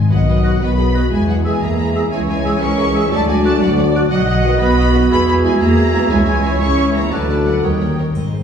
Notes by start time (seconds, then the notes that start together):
0.09 B1 D#3 F#3 B3 F#4 B4 D#5 F#5
0.27 F#3 B4 D#5 F#5
0.43 F#4 B4 D#5 F#6
0.60 B1 D#3 F#3 B3 F#4 B4 D#5 B5
0.78 G#4 B4 D#5
0.94 F#4 B4 D#5 F#6
1.10 E2 B2 E3 G#3 E4 G#4 E5 G#5
1.28 F#3 G#4 E5 F#5
1.44 G#3 G#4 E5 G#5 E6
1.61 E2 A#3 G#4 E5 A#5
1.79 G#4 E5
1.95 G#4 E5 E6
2.11 C#2 E3 G#3 C#4 E4 G#4 C#5 E5 G#5
2.29 G#3 G#4 E5 G#5
2.45 G#4 E5 E6
2.60 C#2 E3 G#3 C#4 E4 G#4 A#4 E5 C#6
2.77 G#4 E5
2.94 G#4 E5 E6
3.10 D2 D3 F#3 A3 D4 F#4 D5 A5
3.28 G#3 F#4 D5 G#5
3.44 A3 F#4 D5 A5 F#6
3.61 D2 D3 F#3 D4 F#4 D5 F#5
3.78 F#4 D5
3.94 F#4 D5 F#6
4.10 B1 F#3 F#4 D#5 F#5 F#6
4.26 F#3 F#4 D#5 F#5
4.43 D#3 F#3 B3 F#4 D#5
4.60 B1 B3 F#4 B4 D#5 B5
4.77 F#4 D#5
4.93 D#3 F#3 B3 F#4 D#5
5.10 E2 B3 G#4 E5 B5 G#6
5.27 B3 G#4 E5 B5
5.44 E3 G#3 B3 E4 G#4 E5 G#5
5.60 E2 A#3 G#4 E5 A#5
5.77 G#4 E5
5.93 E3 G#3 B3 E4 G#4 E5
6.09 C#2 E3 G#3 C#4 E4 G#4 C#5 E5 G#5
6.26 G#3 G#4 E5 G#5
6.44 G#4 E5
6.60 C#2 E3 G#3 C#4 E4 G#4 E5 C#6
6.78 G#4 E5
6.94 A#3 G#4 E5 A#5
7.10 D2 D3 F#3 A3 F#4 A4 B4 D5 A5 F#6
7.30 F#4 D5
7.45 F#3 F#4 D5 F#5
7.62 D#2 D#3 G3 A#3 C#4 D#4 A#4 C#5 G5 D#6
7.80 A#4 C#5
7.98 A#4 C#5
8.14 G#1 G#2 C4 D#4 D#5, triangle
8.31 G#3 C4 C5